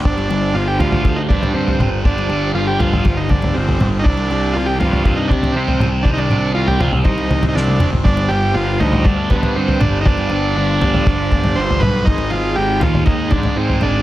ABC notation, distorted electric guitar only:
X:1
M:4/4
L:1/8
Q:1/4=120
K:none
V:1 name="Distorted electric guitar" clef=bass
[G,,D,G,] [D,G,] [G,,D,G,] [D,G,]3 [G,,D,G,] [D,G,] | [G,,D,G,] [D,G,] [G,,D,G,] [D,G,]3 [G,,D,G,] [D,G,] | [C,G,C] [G,C] [C,G,C] [G,C]3 [C,G,C] [G,C] | [C,G,C] [G,C] [C,G,C] [G,C]3 [C,G,C] [G,C] |
[G,,D,G,] [D,G,] [G,,D,G,] [D,G,]3 [G,,D,G,] [D,G,] | [G,,D,G,] [D,G,] [G,,D,G,] [D,G,]3 [G,,D,G,] [D,G,] | [_A,,_E,_A,] [E,A,] [A,,E,A,] [E,A,]3 [A,,E,A,] [E,A,] |]